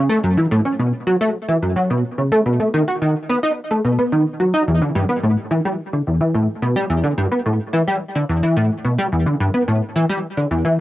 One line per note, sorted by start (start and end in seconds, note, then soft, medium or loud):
0.09 0.19 A3 loud
0.23 0.37 F#2 medium
0.37 0.46 E3 medium
0.51 0.60 A2 loud
0.65 0.74 C#4 medium
0.79 0.92 B2 medium
1.07 1.16 F#3 loud
1.21 1.30 A3 loud
1.48 1.58 E3 medium
1.62 1.76 F#2 medium
1.76 1.89 F#3 medium
1.90 2.03 B2 medium
2.18 2.31 C#3 medium
2.32 2.41 A3 loud
2.46 2.59 B2 medium
2.60 2.69 A3 medium
2.74 2.83 D#3 loud
2.88 2.97 F#4 medium
3.02 3.15 D#3 medium
3.29 3.38 B3 medium
3.43 3.52 D#4 loud
3.71 3.80 A3 medium
3.85 3.98 B2 medium
3.99 4.12 B3 medium
4.12 4.25 D#3 medium
4.40 4.53 F#3 medium
4.54 4.63 D#4 loud
4.68 4.81 E2 medium
4.82 4.91 D3 medium
4.95 5.05 G2 loud
5.09 5.18 B3 medium
5.23 5.37 A2 medium
5.51 5.60 E3 medium
5.65 5.74 G3 loud
5.93 6.02 D3 medium
6.07 6.20 E2 medium
6.21 6.34 E3 medium
6.34 6.48 A2 medium
6.62 6.75 B2 medium
6.76 6.85 G3 loud
6.90 7.03 E2 medium
7.04 7.13 D3 medium
7.18 7.27 G2 loud
7.32 7.41 B3 medium
7.46 7.59 A2 medium
7.73 7.82 E3 loud
7.88 7.97 G3 loud
8.15 8.24 D3 medium
8.29 8.42 E2 medium
8.43 8.56 E3 medium
8.57 8.70 A2 medium
8.85 8.98 B2 medium
8.98 9.08 G3 loud
9.12 9.25 E2 medium
9.26 9.35 D3 medium
9.40 9.49 G2 loud
9.54 9.63 B3 medium
9.68 9.81 A2 medium
9.96 10.05 E3 loud
10.09 10.19 G3 loud
10.37 10.46 D3 medium
10.51 10.64 E2 medium
10.65 10.78 E3 medium